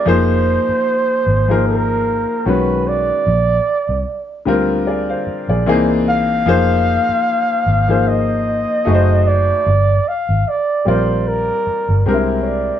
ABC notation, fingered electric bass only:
X:1
M:4/4
L:1/16
Q:"Swing 16ths" 1/4=75
K:Fdor
V:1 name="Fingered electric bass" clef=bass
F,,,3 z3 A,,,4- A,,, z =B,,,4 | B,,,2 z C,, z2 D,,4 z B,,, C,,4 | F,,,3 z3 A,,,4- A,,, z ^F,,,4 | G,,,2 z A,,, z2 B,,,4 z G,,, C,,4 |]